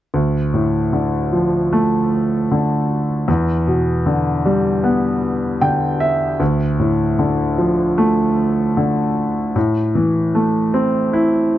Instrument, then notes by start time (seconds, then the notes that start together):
grand piano
0.14 D2
0.54 A2
0.93 D3
1.33 F3
1.73 A3
2.51 D3
3.28 E2
3.67 B2
4.06 D3
4.46 G3
4.84 B3
5.61 D3 G5
6.00 E5
6.40 D2
6.79 A2
7.19 D3
7.58 F3
7.98 A3
8.77 D3
9.56 A2
9.95 E3
10.35 A3
10.74 C4
11.13 E4